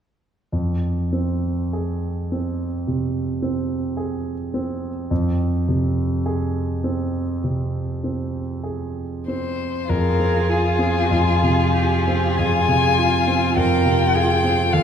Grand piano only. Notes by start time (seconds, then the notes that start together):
0.52 F2
1.13 C4
1.73 G#4
2.32 C4
2.87 C3
3.42 C4
3.97 G#4
4.54 C4
5.11 F2
5.68 C3
6.26 G#4
6.84 C4
7.44 C3
8.04 C4
8.64 G#4
9.28 C4
9.89 F2
10.19 C4
10.49 F4
10.79 C4
11.11 F2
11.43 C3
11.74 F4
12.07 C4
12.39 F2
12.68 C3
12.99 F4
13.28 C4
13.56 F2
13.85 C3
14.15 F4
14.44 C4
14.73 D#2